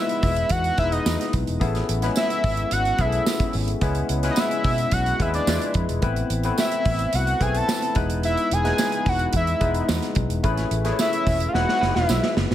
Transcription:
Already playing: tine electric piano G#3 B3 D#4 E4 B4
0.00 analog synth lead E5
0.09 closed hi-hat
0.23 fingered electric bass E1, kick, snare, open hi-hat
0.36 closed hi-hat
0.49 fingered electric bass E2, analog synth lead F#5, kick, closed hi-hat
0.64 closed hi-hat
0.78 fingered electric bass E1, tine electric piano G#3 B3 D#4 E4 B4, analog synth lead E5, kick, closed hi-hat
0.92 analog synth lead D#5, closed hi-hat
1.06 fingered electric bass E2, snare, tambourine
1.21 snare, closed hi-hat
1.33 fingered electric bass B1, kick, closed hi-hat
1.47 fingered electric bass E1, closed hi-hat
1.60 fingered electric bass A1, tine electric piano B3 C#4 E4 G#4 A4, kick, closed hi-hat
1.75 snare, closed hi-hat
1.89 fingered electric bass A1, closed hi-hat
2.02 tine electric piano G#3 B3 C#4 E4 B4, snare, closed hi-hat
2.16 analog synth lead E5, snare, tambourine
2.30 closed hi-hat
2.44 fingered electric bass G#1, kick, open hi-hat
2.57 closed hi-hat
2.71 fingered electric bass G#1, analog synth lead F#5, closed hi-hat
2.85 closed hi-hat
2.98 fingered electric bass B1, tine electric piano B3 C#4 E4 G#4, analog synth lead E5, kick, closed hi-hat
3.07 tine electric piano A4
3.12 closed hi-hat
3.26 snare, tambourine
3.40 kick, closed hi-hat
3.53 fingered electric bass G#1, open hi-hat
3.68 closed hi-hat
3.81 fingered electric bass C#2, tine electric piano G#3 B3 C#4 E4 B4, kick, closed hi-hat
3.95 closed hi-hat
4.09 fingered electric bass C#2, closed hi-hat
4.23 tine electric piano G#3 B3 C#4 E4 B4, snare, closed hi-hat
4.31 analog synth lead D#5
4.36 analog synth lead E5, snare, tambourine
4.51 closed hi-hat
4.64 fingered electric bass B2, kick, snare, open hi-hat
4.78 closed hi-hat
4.92 fingered electric bass B1, analog synth lead F#5, kick, closed hi-hat
5.06 closed hi-hat
5.20 fingered electric bass D#2, tine electric piano G#3 B3 C#4 E4 B4, analog synth lead E5, kick, closed hi-hat
5.34 analog synth lead D5, closed hi-hat
5.47 fingered electric bass E2, tine electric piano G#3 D4 E4 F4 B4, snare, tambourine
5.62 closed hi-hat
5.74 fingered electric bass F2, kick, closed hi-hat
5.89 fingered electric bass E1, closed hi-hat
6.02 fingered electric bass A1, tine electric piano A3 B3 C4 E4 B4, kick, closed hi-hat
6.16 closed hi-hat
6.30 fingered electric bass A1, closed hi-hat
6.43 tine electric piano A3 B3 C4 E4 B4, closed hi-hat
6.58 analog synth lead E5, snare, tambourine
6.72 closed hi-hat
6.85 fingered electric bass A1, kick, open hi-hat
6.99 closed hi-hat
7.13 fingered electric bass C2, analog synth lead F#5, closed hi-hat
7.27 closed hi-hat
7.40 fingered electric bass B1, tine electric piano A3 B3 C4 E4 B4, analog synth lead G#5, kick, closed hi-hat
7.55 analog synth lead A5, closed hi-hat
7.68 snare, tambourine
7.82 closed hi-hat
7.95 fingered electric bass E1, tine electric piano G#3 B3 D#4 E4 B4, kick, closed hi-hat
8.10 closed hi-hat
8.23 analog synth lead E5, closed hi-hat
8.37 closed hi-hat
8.51 fingered electric bass E1, analog synth lead G#5, closed hi-hat
8.64 tine electric piano G#3 B3 D#4 E4 B4, snare, closed hi-hat
8.78 snare, tambourine
8.92 closed hi-hat
9.06 fingered electric bass E1, analog synth lead F#5, kick, open hi-hat
9.19 closed hi-hat
9.33 fingered electric bass E2, analog synth lead E5, kick, closed hi-hat
9.47 closed hi-hat
9.60 fingered electric bass E1, tine electric piano G#3 B3 D#4 E4 B4, kick, closed hi-hat
9.75 closed hi-hat
9.89 fingered electric bass E2, snare, tambourine
10.03 snare, closed hi-hat
10.15 fingered electric bass B1, kick, closed hi-hat
10.29 fingered electric bass E1, closed hi-hat
10.43 fingered electric bass A1, tine electric piano A3 C#4 E4 G#4 B4, kick, closed hi-hat
10.57 snare, closed hi-hat
10.71 fingered electric bass A1, closed hi-hat
10.84 tine electric piano A3 C#4 E4 G#4 B4, snare, closed hi-hat
10.92 tine electric piano C#5
10.99 analog synth lead E5, snare, tambourine
11.13 closed hi-hat
11.27 fingered electric bass E1, kick, snare, open hi-hat
11.40 closed hi-hat
11.48 analog synth lead F5
11.53 fingered electric bass E1, tine electric piano G#3 B3 D#4 E4 B4, analog synth lead F#5, snare
11.69 snare
11.80 fingered electric bass F#1, tine electric piano F#3 B3 E4 B4, snare
11.86 tine electric piano G#3
11.95 fingered electric bass E1, analog synth lead E5, snare
12.09 fingered electric bass B1, snare, tambourine
12.23 snare
12.37 fingered electric bass F#1, snare
12.50 fingered electric bass G#1, snare

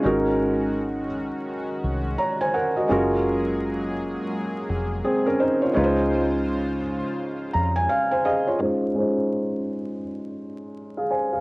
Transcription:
0.03 fingered electric bass G#1, analog synth pad D#3 G#3 C#4 F#4, felt piano G#3 C#4 D#4 F#4 A#4
1.84 fingered electric bass C2
2.18 felt piano C#5 A#5
2.41 felt piano C5 G#5
2.54 felt piano A#4 F#5
2.76 felt piano F#4 D#5
2.88 fingered electric bass F#1, analog synth pad F#3 A#3 G#4, felt piano G#3 C#4 F4 F#4 A#4
4.69 fingered electric bass F1
5.04 felt piano C4 G#4
5.26 felt piano C#4 A#4
5.40 felt piano D#4 C5
5.62 felt piano F4 C#5
5.73 fingered electric bass C#2, analog synth pad C#3 G#3 F4 C5, felt piano G#3 C#4 D#4 F4 B4
5.84 felt piano C5
7.54 fingered electric bass F2, felt piano A#5
7.76 felt piano G#5
7.89 felt piano F5
8.11 felt piano C5 G#5
8.25 felt piano G#4 D#5 F5
8.47 felt piano F4 C#5
8.59 felt piano G#3 C#4 D#4 F4 C5
8.94 felt piano G#3 C#4 D#4 F4 C5
10.97 felt piano G#4 F5
11.11 felt piano C5 G#5
11.33 felt piano G#4 F5

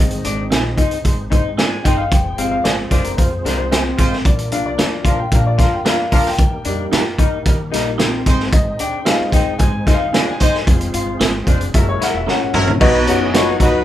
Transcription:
Already playing: upright bass G#1, upright piano D#3 D#5, tonewheel organ C4 D#4 G#4 C5
0.00 upright piano G#3 C4
0.11 closed hi-hat
0.25 upright bass G#1, clean electric guitar D4, closed hi-hat
0.50 upright bass A#1, clean electric guitar C4 D#4 G#4, snare, closed hi-hat
0.77 horn section G#3 D#4 C5, clean electric guitar D#4, kick, closed hi-hat
0.91 closed hi-hat
1.05 upright bass G#1, horn section G#3 D#4 C5, kick, closed hi-hat
1.30 horn section G#3 D#4 C5, clean electric guitar D#4, kick, closed hi-hat
1.44 upright bass G#2
1.57 clean electric guitar C4 D4 D#4 G#4, upright piano G#5, snare, closed hi-hat
1.84 upright bass G1, horn section G#3 D#4 C5, clean electric guitar D#4, upright piano G5, kick, closed hi-hat
1.97 upright piano F5
2.11 upright bass F1, tonewheel organ F4 C5, upright piano G5, kick, closed hi-hat
2.37 upright bass G1, upright piano F3 G#3 C4 F5, clean electric guitar C4, closed hi-hat
2.51 upright piano F5
2.64 upright bass G#1, clean electric guitar C4 F4 G#4, upright piano D5, snare, closed hi-hat
2.90 upright bass F1, horn section G#3 F4 C5, clean electric guitar D4, upright piano C5, kick, snare, closed hi-hat
3.04 upright piano A#4, closed hi-hat
3.17 upright bass F2, horn section G#3 F4 C5, upright piano C5, kick, closed hi-hat
3.44 upright bass C2, upright piano F3 G#3 C4 A#4, horn section G#3 F4 C5, clean electric guitar D4, snare, closed hi-hat
3.58 upright piano C5
3.71 clean electric guitar C4 F4 G#4, snare, closed hi-hat
3.97 upright bass G#1, horn section G#3 F4 C5, kick, closed hi-hat
4.13 snare
4.24 upright bass A#1, tonewheel organ A#3 D4 A#4, upright piano D5, kick, closed hi-hat
4.39 closed hi-hat
4.51 upright piano F3 A#3 D4 F5, clean electric guitar D4, closed hi-hat
4.66 upright piano D5
4.78 upright bass D2, clean electric guitar D4 F4 A#4, snare, closed hi-hat
5.04 upright bass A#1, horn section F3 D4 A#4, clean electric guitar F4, upright piano F5, kick, closed hi-hat
5.19 upright piano G5
5.32 upright bass A#2, upright piano F3 A#3 D4 F5, horn section F3 D4 A#4, kick, closed hi-hat
5.47 upright piano D5
5.58 horn section F3 D4 A#4, clean electric guitar F4, upright piano F5, kick, snare, closed hi-hat
5.73 upright piano G5
5.85 clean electric guitar D4 F4 A#4, upright piano F5, snare, closed hi-hat
6.12 upright bass D2, horn section F3 D4 A#4, clean electric guitar F4, upright piano F5, kick, open hi-hat
6.26 upright piano G5, snare
6.38 upright bass D#2, tonewheel organ D#4 G4 A#4, kick, closed hi-hat
6.65 upright bass F2, upright piano G3 A#3 D#4, clean electric guitar D4, closed hi-hat
6.91 upright bass G2, clean electric guitar D#4 G4 A#4, snare, closed hi-hat
7.18 upright bass D#2, horn section G3 D#4 A#4, clean electric guitar D#4, kick, closed hi-hat
7.46 upright bass D#3, horn section G3 D#4 A#4, kick, closed hi-hat
7.71 upright bass A#1, upright piano G3 A#3 D#4, horn section G3 D#4 A#4, clean electric guitar D#4, snare, closed hi-hat
7.98 clean electric guitar C4 D#4 G4 A#4, snare, closed hi-hat
8.26 upright bass G#1, horn section G#3 D#4 C5, tonewheel organ C4 G#4 C5, kick, closed hi-hat
8.40 snare
8.52 upright piano D#5, kick, closed hi-hat
8.79 upright bass D2, clean electric guitar D4, upright piano G5, closed hi-hat
9.05 upright piano G#3 C4 D#4 F5, clean electric guitar C4 D#4 G#4, snare, closed hi-hat
9.20 muted upright bass stroke
9.31 upright bass D#2, horn section G#3 D#4 C5, clean electric guitar D#4, upright piano G5, kick, snare, closed hi-hat
9.58 upright bass G#2, horn section G#3 D#4 C5, upright piano G#5, kick, closed hi-hat
9.86 upright bass D#2, horn section G#3 D#4 C5, clean electric guitar D#4, kick, snare, closed hi-hat
9.94 upright piano F5
10.13 clean electric guitar C4 D4 D#4 G#4, snare, closed hi-hat
10.30 upright piano G#5
10.40 upright bass G1, horn section G#3 D#4 C5, clean electric guitar D#4, kick, closed hi-hat
10.54 snare
10.66 upright bass F1, upright piano G#3 C4 F4, tonewheel organ C4 F4 G#4 C5, kick, closed hi-hat
10.81 closed hi-hat
10.94 upright bass G1, clean electric guitar F4, closed hi-hat
11.20 upright bass G#1, clean electric guitar C4 F4 G#4, snare, closed hi-hat
11.46 upright bass F1, horn section G#3 F4 C5, clean electric guitar D4, kick, closed hi-hat
11.61 closed hi-hat
11.74 upright bass F#1, horn section F#3 E4 A#4, upright piano G#3 A#3 E4 E5, tonewheel organ C#4 E4 F#4 A#4, kick, closed hi-hat
11.89 upright piano C#5
12.01 horn section F#3 E4 A#4, clean electric guitar E4, upright piano F#5, muted upright bass stroke, snare, closed hi-hat
12.14 upright bass E1, upright piano E5
12.26 clean electric guitar C#4 E4 A#4, upright piano F#5, snare
12.41 upright bass G#1, upright piano F#5
12.54 upright bass G#1, horn section F#3 E4 A#4, mid tom
12.67 upright bass A#1, floor tom
12.80 upright bass B1, upright piano B2 D#4 F#4 B4 D#5, horn section F#3 D#4 B4, tonewheel organ F#3 B3 D#4 F#4, clean electric guitar B3, kick, crash
13.07 upright bass F#1, clean electric guitar C#4, upright piano D#4 F#4 B4 F#5, closed hi-hat
13.21 horn section G#3 E4 G#4
13.33 horn section D#3 B3 F#4, clean electric guitar D#4 F#4 B4, upright piano D#4 F#4 B4 C#5, snare, closed hi-hat
13.60 upright bass C#2, horn section F#3 D#4 B4, upright piano D#4 F#4 B4 D#5, clean electric guitar F#4, kick, snare, closed hi-hat

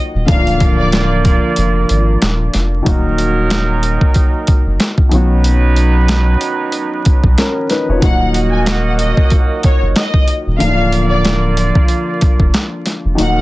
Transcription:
Already playing: upright piano D#3 F#3 A#3 D#4 F#4
0.14 sub bass D#1
0.26 sub bass D1, upright piano D3 F3 A#3, horn section A#3 F4 D5, violin section F5, kick, closed hi-hat
0.30 upright piano D4 D#4
0.38 upright piano F4
0.47 closed hi-hat
0.60 kick, closed hi-hat
0.79 violin section D5
0.92 snare, closed hi-hat
1.25 kick, closed hi-hat
1.56 sub bass F1, closed hi-hat
1.89 sub bass G#1, closed hi-hat
2.22 sub bass D#1, snare, closed hi-hat
2.53 sub bass F1, snare, closed hi-hat
2.83 sub bass D#1, upright piano D#3 F#3 A#3, horn section F#3 D#4 A#4, kick, closed hi-hat
2.87 upright piano D#4 F#4
3.18 closed hi-hat
3.50 snare, closed hi-hat
3.83 closed hi-hat
4.01 kick
4.14 kick, closed hi-hat
4.47 kick, closed hi-hat
4.66 sub bass F#1
4.80 snare, closed hi-hat
4.98 kick
5.09 sub bass B1, upright piano D#3 F#3 B3, closed hi-hat
5.13 horn section F#3 D#4 B4, upright piano C#4 F#4
5.44 closed hi-hat
5.76 closed hi-hat
6.08 snare, closed hi-hat
6.41 closed hi-hat
6.72 closed hi-hat
7.05 kick, closed hi-hat
7.24 sub bass B1, kick
7.38 upright piano C#4 A#4, snare, closed hi-hat
7.70 upright piano D#4 B4, snare, closed hi-hat
7.89 sub bass F1, upright piano F4 C#5
7.99 sub bass D#1, upright piano D#3 F#3 A#3, horn section A#3 F#4 D#5, violin section F#5, kick, closed hi-hat
8.03 upright piano D#4 F#4
8.34 closed hi-hat
8.52 violin section G#5
8.66 violin section F#5, snare, closed hi-hat
8.85 violin section F#5
8.99 violin section D#5, closed hi-hat
9.17 kick
9.30 kick, closed hi-hat
9.63 violin section C#5, kick, closed hi-hat
9.82 sub bass F#1
9.96 violin section D#5, snare, closed hi-hat
10.14 kick
10.28 closed hi-hat
10.47 sub bass D#1
10.58 sub bass D1, upright piano D3 F3 A#3, horn section A#3 F4 D5, violin section F5, closed hi-hat
10.62 upright piano D4 D#4
10.70 upright piano F4
10.92 closed hi-hat
11.11 violin section D5
11.25 snare, closed hi-hat
11.57 closed hi-hat
11.75 kick
11.88 closed hi-hat
12.21 kick, closed hi-hat
12.40 sub bass F1, kick
12.54 snare, closed hi-hat
12.86 snare, closed hi-hat
13.05 sub bass F1
13.15 sub bass D#1, upright piano D#3 F#3 A#3, horn section F#3 D#4 A#4, closed hi-hat
13.19 upright piano D#4 F#4, violin section F#5

